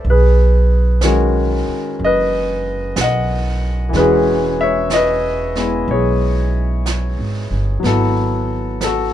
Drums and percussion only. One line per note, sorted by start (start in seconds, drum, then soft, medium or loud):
0.04 brush sweep soft
1.01 brush sweep soft
1.01 snare soft
1.01 hi-hat pedal soft
1.99 brush sweep soft
2.96 brush sweep soft
2.96 snare soft
2.96 hi-hat pedal medium
3.93 brush sweep soft
3.93 snare soft
4.90 brush sweep soft
4.90 snare soft
4.90 hi-hat pedal soft
5.55 snare soft
5.88 brush sweep soft
6.86 brush sweep soft
6.86 snare soft
6.86 hi-hat pedal soft
7.84 brush sweep soft
7.84 snare soft
8.81 brush sweep soft
8.81 snare soft
8.81 hi-hat pedal soft